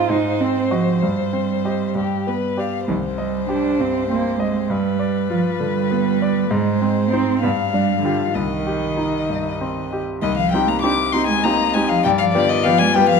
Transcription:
0.00 0.10 G#2 soft
0.00 0.14 C4 soft
0.00 0.13 D#4 soft
0.00 0.11 F4 medium
0.00 1.93 C5 soft
0.00 0.13 D#5 soft
0.10 1.00 G#2 soft
0.10 0.42 D#4 medium
0.41 0.90 C4 soft
0.41 0.73 C4 medium
0.71 1.04 F3 soft
0.71 1.00 F#4 soft
0.71 1.00 D#5 soft
1.02 1.93 G2 soft
1.02 2.59 G3 soft
1.33 1.84 C4 soft
1.65 1.93 G4 soft
1.65 1.94 D#5 soft
1.95 2.86 G2 soft
1.95 2.29 G4 soft
2.27 2.77 B3 soft
2.27 2.61 B4 soft
2.57 2.86 G4 soft
2.57 2.86 D5 soft
2.57 2.89 F5 soft
2.88 4.66 C2 soft
2.88 2.97 D#3 soft
2.88 4.72 C5 soft
3.18 3.49 G3 soft
3.18 3.68 D#5 soft
3.49 3.82 D4 medium
3.49 3.99 G4 soft
3.79 4.29 G2 soft
3.79 4.11 C4 soft
4.10 4.39 A#3 medium
4.10 4.59 C4 soft
4.40 4.72 G#3 medium
4.40 4.70 D#5 soft
4.70 6.46 G2 soft
4.70 5.30 G3 medium
4.70 6.52 B4 soft
4.99 5.48 D5 soft
5.30 5.39 F3 medium
5.30 5.79 F4 soft
5.60 6.08 D3 soft
5.60 6.49 G3 medium
5.91 6.39 B3 soft
6.22 6.52 D5 soft
6.50 7.39 G#2 medium
6.50 7.11 G#3 medium
6.50 7.40 C5 soft
6.82 7.30 C4 soft
7.10 7.41 C4 medium
7.10 7.40 D#4 soft
7.10 7.40 C5 soft
7.41 8.32 G2 soft
7.41 7.50 B3 medium
7.41 8.36 F5 soft
7.71 8.01 G3 medium
7.71 8.22 D4 soft
8.02 8.33 D3 soft
8.02 8.32 F4 soft
8.02 8.32 G4 soft
8.34 10.19 C2 soft
8.34 9.88 D#3 medium
8.34 10.02 D#5 soft
8.67 9.16 G4 soft
8.97 9.47 D#4 soft
9.29 9.79 G2 soft
9.61 10.11 C4 soft
9.93 10.23 G4 soft
10.21 10.52 C2 soft
10.21 10.39 D#3 medium
10.21 10.36 D#5 medium
10.37 10.54 F3 soft
10.37 10.51 F5 medium
10.52 10.70 G3 soft
10.52 10.80 C4 soft
10.52 10.81 D#4 soft
10.52 10.81 G4 soft
10.52 10.70 G5 medium
10.68 10.83 A#3 soft
10.68 10.81 A#5 medium
10.82 11.10 C4 soft
10.82 10.91 D4 medium
10.82 11.11 D#4 soft
10.82 11.11 G4 soft
10.82 11.14 D6 medium
11.12 11.41 C4 soft
11.12 11.31 C4 medium
11.12 11.41 D#4 soft
11.12 11.41 G4 soft
11.12 12.04 D#5 medium
11.12 11.26 C6 medium
11.27 11.45 G#3 medium
11.27 11.45 G#5 medium
11.44 11.76 A#3 medium
11.44 11.71 C4 soft
11.44 11.71 D#4 soft
11.44 11.72 G4 soft
11.44 11.75 A#5 medium
11.74 11.89 G#3 soft
11.74 12.01 C4 soft
11.74 12.02 D#4 soft
11.74 12.02 G4 soft
11.74 11.90 G#5 medium
11.89 11.95 F3 soft
11.89 12.03 F5 medium
12.03 12.34 G2 medium
12.03 12.10 G3 medium
12.03 12.94 D5 medium
12.03 12.10 G5 medium
12.18 12.37 F3 medium
12.18 12.24 F5 medium
12.33 12.52 D3 medium
12.33 12.62 B3 soft
12.33 12.62 F4 soft
12.33 12.62 G4 soft
12.33 12.51 D5 medium
12.49 12.68 D#3 medium
12.49 12.65 D#5 medium
12.63 12.82 F3 medium
12.63 12.92 B3 soft
12.63 12.92 F4 soft
12.63 12.92 G4 soft
12.63 12.80 F5 medium
12.78 12.94 G#3 medium
12.78 12.95 G#5 medium
12.94 13.09 G3 medium
12.94 13.20 B3 soft
12.94 13.20 F4 soft
12.94 13.20 G4 soft
12.94 13.20 B4 medium
12.94 13.08 G5 medium
13.09 13.20 F3 medium
13.09 13.20 F5 medium

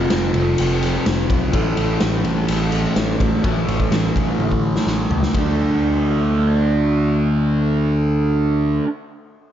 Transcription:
0.00 1.53 F2 medium
0.00 1.52 C3 medium
0.00 1.53 F3 loud
0.10 0.31 F1 medium
0.10 snare loud
0.10 ride medium
0.23 high conga medium
0.34 0.54 F1 medium
0.34 ride medium
0.34 low conga medium
0.58 0.96 F1 medium
0.58 ride medium
0.82 ride medium
0.82 high conga medium
1.06 1.25 F1 medium
1.06 snare loud
1.06 ride medium
1.29 1.49 B1 medium
1.29 kick medium
1.29 ride medium
1.29 low conga medium
1.41 high conga medium
1.53 1.73 A1 medium
1.53 3.42 A2 medium
1.53 3.43 E3 medium
1.53 3.45 A3 loud
1.53 kick loud
1.53 ride medium
1.53 low conga medium
1.64 high conga medium
1.77 1.96 A1 medium
1.77 ride medium
2.00 2.20 A1 medium
2.00 snare medium
2.00 ride medium
2.12 high conga medium
2.24 2.44 A1 medium
2.24 ride medium
2.24 low conga medium
2.48 2.86 A1 medium
2.48 ride medium
2.72 ride medium
2.72 high conga medium
2.96 3.15 A1 medium
2.96 snare loud
2.96 ride medium
3.19 3.39 A1 medium
3.19 kick medium
3.19 ride medium
3.19 low conga medium
3.32 high conga medium
3.43 3.63 A1 medium
3.43 5.32 A2 medium
3.43 5.33 E3 medium
3.43 5.34 A3 medium
3.43 kick loud
3.43 ride medium
3.43 low conga medium
3.56 high conga medium
3.68 3.86 A1 medium
3.68 ride medium
3.68 low conga medium
3.80 kick medium
3.91 4.10 A1 medium
3.91 snare medium
3.91 ride medium
4.04 high conga medium
4.16 4.34 A1 medium
4.16 kick medium
4.16 ride medium
4.16 high conga medium
4.16 low conga medium
4.39 4.77 A1 medium
4.39 high tom soft
4.52 kick soft
4.63 high conga medium
4.76 snare medium
4.87 5.05 A1 medium
4.87 snare medium
5.10 5.29 C#2 medium
5.10 floor tom medium
5.10 low conga medium
5.22 snare medium
5.22 high conga medium
5.34 8.79 D2 medium
5.34 8.84 D3 medium
5.34 8.87 A3 medium
5.34 kick medium
5.34 ride bell medium
5.34 high conga medium
5.38 8.88 D4 loud

